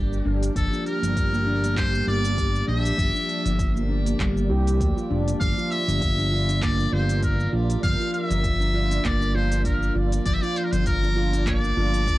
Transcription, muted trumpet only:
0.57 A4
0.87 A#4
1.77 C5
2.08 D5
2.68 E5
5.40 F5
5.71 E5
6.62 D5
6.92 C5
7.23 A#4
7.83 F5
8.13 E5
9.05 D5
9.35 C5
9.65 A#4
10.26 D5
10.34 E5
10.42 D5
10.57 C5
10.64 A#4
10.72 C5
10.86 A#4
11.47 D5

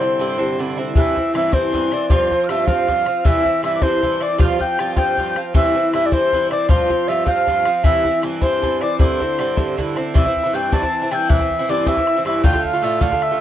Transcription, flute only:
Already playing: C5
0.96 E5
1.35 E5
1.54 C5
1.93 D5
2.10 C5
2.50 E5
2.66 F5
3.25 E5
3.64 E5
3.82 C5
4.22 D5
4.40 F5
4.60 G5
4.96 G5
5.55 E5
5.93 E5
6.06 D5
6.12 C5
6.51 D5
6.69 C5
7.08 E5
7.27 F5
7.84 E5
8.42 C5
8.81 D5
8.98 C5
10.15 E5
10.55 G5
10.73 A5
11.11 G5
11.29 E5
11.70 D5
11.87 E5
12.27 E5
12.44 G5
12.64 F5
12.84 E5
13.02 F5
13.23 E5

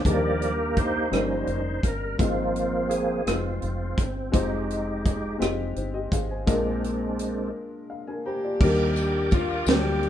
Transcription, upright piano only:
0.05 D#3 G3 A#3 D4 D#4 G#4
0.13 A#4
1.10 G2 G3 A#3 C#4 D#4 A#4
2.19 G#2 G#3 C4 D#4 F4 C5
3.26 G#3 C4 D#4 F4 B4
3.34 C5
4.32 G#3 C4 D#4 F4 C5
5.38 G#3 C4 D#4 F4 G4
5.76 D#4 C5
5.94 G4 D#5
6.13 G#4 F5
6.31 C5 G#5
6.46 A#2 G#3 A#3 D4 F4 A#4
7.90 F5
8.07 D4 A#4 G#5
8.26 C5 A#5
8.44 F4 D5
8.61 D#3 G3 A#3 D4 G4 A#4
9.68 F#3 A#3 D4 G4 C5
9.74 G3

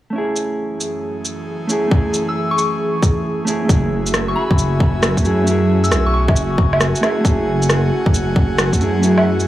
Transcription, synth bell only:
2.29 E6
2.51 C#6
2.58 C#6
4.28 C#6
4.36 B5
5.84 E6
6.06 C#6
6.14 C#6

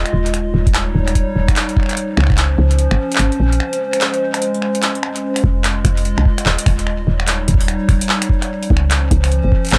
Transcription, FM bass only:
0.13 D#1
0.54 D#1
0.95 D#1
1.36 D#1
2.17 C#2
2.58 C#2
2.91 G#1
3.19 G#1
3.40 A#1
5.44 F1
5.85 F1
6.18 C2
6.46 D#1
6.66 D#1
7.07 D#1
7.48 D#1
7.89 D#1
8.70 C#2
9.11 C#2
9.44 G#1
9.72 G#1

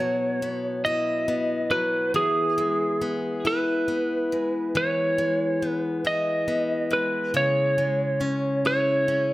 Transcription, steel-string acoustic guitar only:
Already playing: B2 B3 E4
0.00 F#3
0.42 B3
0.86 E4
1.28 B3
1.71 F#3
2.14 E3
2.58 G#3
3.02 B3
3.45 E4
3.88 B3
4.32 G#3
4.75 E3
5.18 G#3
5.62 B3
6.05 E4
6.48 B3
6.91 G#3
7.34 C#3
7.78 G#3
8.21 C#4
8.65 E4
9.08 C#4

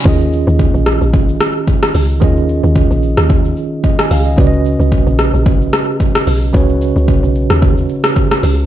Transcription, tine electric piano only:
Already playing: G#5
0.04 D#3 C#4 F4 G#4
0.08 D#5
2.20 D#3 C#4 F4 G#4
2.24 D#5
3.84 D#5
3.99 G#5
4.11 F5
4.26 D#5
4.36 C#3 C#4 F#4 B4
4.40 D5
4.47 D#5
6.53 C#3 C#4 F#4 B4
6.57 C#5

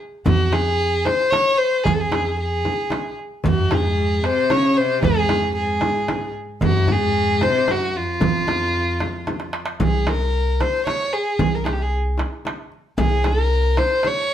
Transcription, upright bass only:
0.26 F2
1.86 F2
3.45 F2
5.04 F2
6.62 F2
8.21 F2
9.80 C2
11.39 C2
12.98 C2

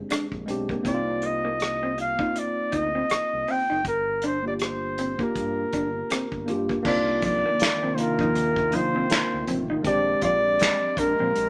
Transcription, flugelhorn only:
0.88 D5
1.26 D#5
2.01 F5
2.38 D5
2.76 D#5
3.51 G5
3.88 A#4
4.26 C5
4.48 D5
4.64 C5
5.23 A#4
6.87 D5
7.25 D5
7.95 C5
8.00 A#4
8.75 C5
9.87 D5
10.25 D5
10.99 A#4

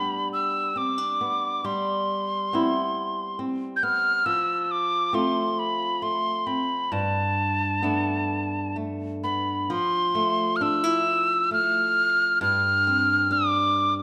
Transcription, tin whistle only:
Already playing: B5
0.33 E6
0.77 D6
1.66 C6
3.76 G6
3.83 F6
4.26 E6
4.64 E6
4.71 D6
5.14 C6
5.59 B5
6.03 C6
6.47 B5
6.92 A5
9.24 B5
9.72 C6
10.56 F6
10.62 E6
11.53 F6
12.42 F6
13.32 D6

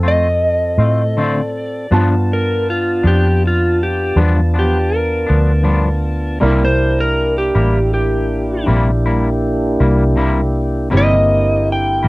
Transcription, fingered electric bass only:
Already playing: F2
0.78 A2
1.91 G2
3.04 F2
4.16 E2
5.30 D2
6.42 C2
7.55 A1
8.68 A#1
9.80 C2
10.93 G1
12.04 A1

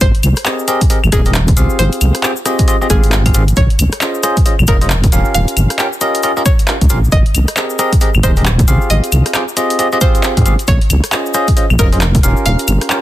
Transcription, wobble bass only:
0.01 G#1
0.23 C2
1.04 G#1
1.12 D#1
1.57 C2
1.79 G#1
2.01 C2
2.90 G#1
3.35 G#1
3.57 A#1
3.79 C#2
4.59 A#1
4.68 F1
5.12 D#1
5.35 D#1
5.57 G1
6.81 C#2
6.90 A#1
7.12 G#1
7.35 C2
8.15 G#1
8.23 D#1
8.68 C2
8.90 G#1
9.12 C2
10.37 G#2
10.46 G#1
10.68 A#1
10.90 C#2
11.70 A#1
11.79 F1
12.23 D#1
12.46 D#1
12.68 G1

